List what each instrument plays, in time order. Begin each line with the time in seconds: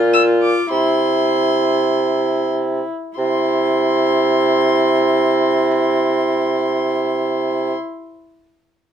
Already playing: bassoon A#2, viola F4
0.13 violin E6
0.42 violin D6
0.71 bassoon C3, viola E4, violin C6
3.18 bassoon C3, viola E4, violin C6